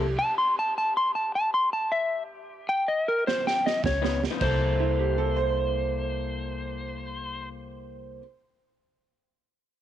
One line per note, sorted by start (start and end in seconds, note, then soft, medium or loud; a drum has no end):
0.00 0.14 C2 medium
0.00 3.80 G4 medium
0.19 0.37 A5 medium
0.38 0.56 C6 medium
0.59 0.76 A5 medium
0.78 0.95 A5 medium
0.97 1.14 C6 medium
1.15 1.33 A5 medium
1.35 1.53 A5 medium
1.54 1.72 C6 medium
1.73 1.91 A5 medium
1.92 2.22 E5 medium
2.69 2.87 G5 medium
2.88 3.06 D#5 medium
3.08 3.26 A#4 medium
3.27 3.45 C5 medium
3.27 snare medium
3.47 3.65 G5 medium
3.47 snare soft
3.66 3.84 D#5 medium
3.66 snare medium
3.84 4.23 C#2 medium
3.84 4.22 C#5 medium
3.84 kick medium
3.84 snare medium
4.02 4.20 C#3 medium
4.02 4.20 F3 medium
4.02 4.21 B3 medium
4.02 4.21 D#4 medium
4.02 snare medium
4.21 muted clean electric guitar stroke soft
4.21 snare medium
4.30 4.39 C#3 medium
4.30 4.41 F3 medium
4.30 4.41 B3 medium
4.30 4.40 D#4 medium
4.39 8.18 C2 medium
4.39 8.21 C3 loud
4.39 8.22 A#3 medium
4.39 8.23 E4 medium
4.39 7.48 C5 medium
4.39 kick medium
4.39 crash medium
4.43 8.23 A4 loud
4.80 4.98 E4 medium
4.99 5.18 G4 medium
5.18 5.37 A4 medium
5.36 8.17 C5 medium